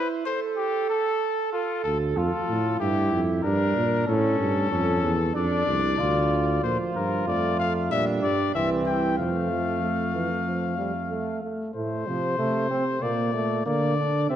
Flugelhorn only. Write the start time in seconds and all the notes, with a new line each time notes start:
Already playing: E4
0.26 A4
1.54 A4
2.17 F4
2.80 E4
3.44 D4
4.07 C#4
4.71 C#4
5.35 D4
5.99 F4
6.63 F4
7.91 D4
8.55 C4
9.19 A3